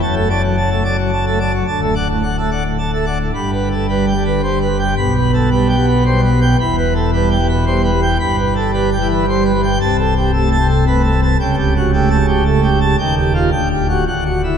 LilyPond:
<<
  \new Staff \with { instrumentName = "Pipe organ" } { \time 3/4 \key g \major \tempo 4 = 111 << { a''16 r2 r8. | a''16 r2 r8. | b''8 r2 r8 | b''8 r2 r8 |
b''8 r2 r8 | b''8 r2 r8 | a''8 r2 r8 | r4 \tuplet 3/2 { r8 a''8 r8 } r4 |
g''8 r8 g''8 r8 fis''8 r8 | } \\ { r16 a'16 <d'' a''>16 fis16 a''16 a'16 <d'' a''>16 fis16 a''16 a'16 <d'' a''>16 fis16 | r16 a'16 <d'' fis''>16 a,16 fis''16 a'16 <d'' fis''>16 a,16 a''16 a'16 <d'' fis''>16 a,16 | \tuplet 3/2 { r8 b'8 a'8 b'8 g''8 b'8 c''8 b'8 g''8 } | \tuplet 3/2 { r8 b'8 a'8 b'8 g''8 b'8 c''8 b'8 g''8 } |
\tuplet 3/2 { r8 b'8 a'8 b'8 g''8 b'8 c''8 b'8 g''8 } | \tuplet 3/2 { r8 b'8 a'8 b'8 g''8 b'8 c''8 b'8 g''8 } | \tuplet 3/2 { r8 a'8 g'8 a'8 a''8 a'8 b'8 a'8 a''8 } | \tuplet 3/2 { g''8 g'8 fis'8 g'8 r8 g'8 a'8 g'8 a''8 } |
\tuplet 3/2 { r8 g'8 f'8 r8 g'8 fis'8 r8 fis'8 e'8 } | } >> }
  \new Staff \with { instrumentName = "Pipe organ" } { \clef bass \time 3/4 \key g \major << { fis,16 a16 r8. a16 r8. a16 r8 | d,16 a16 r8. a16 r8. a16 r8 | g,4 g8 d8 g8 r8 | b,4 g8 b8 g8 r8 |
e,4 g8 b,8 g8 r8 | g,4 g8 e8 g8 r8 | c,4 a8 c8 a8 r8 | cis,4 a8 cis8 a8 r8 |
ees,4 d,4 d,4 | } \\ { fis,,2. | d,,2. | g,,2. | b,,2. |
e,,2. | g,,2. | c,,2. | cis,,2. |
ees,,4 d,,4 d,,4 | } >> }
>>